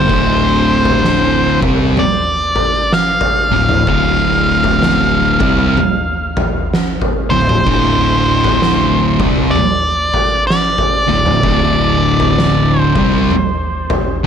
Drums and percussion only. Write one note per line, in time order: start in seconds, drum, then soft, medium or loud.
0.09 kick loud
0.09 floor tom medium
0.85 floor tom medium
1.04 snare medium
1.62 kick loud
1.62 floor tom medium
1.62 mid tom medium
1.97 mid tom medium
2.56 floor tom medium
2.92 snare medium
3.21 floor tom medium
3.69 mid tom medium
3.87 kick medium
3.87 floor tom medium
4.64 floor tom medium
4.82 snare medium
5.40 kick loud
5.40 floor tom medium
5.40 mid tom medium
5.77 mid tom medium
6.37 floor tom medium
6.37 mid tom medium
6.74 snare medium
7.02 floor tom medium
7.49 mid tom medium
7.67 kick medium
7.67 floor tom medium
8.44 floor tom medium
8.62 snare medium
9.20 kick loud
9.20 floor tom medium
9.20 mid tom medium
9.56 mid tom medium
10.14 floor tom medium
10.50 snare medium
10.78 floor tom medium
11.26 mid tom medium
11.43 kick loud
11.43 floor tom medium
12.20 floor tom medium
12.39 snare medium
12.96 kick loud
12.96 floor tom medium
12.96 mid tom medium
13.31 mid tom medium
13.90 floor tom medium
13.90 mid tom medium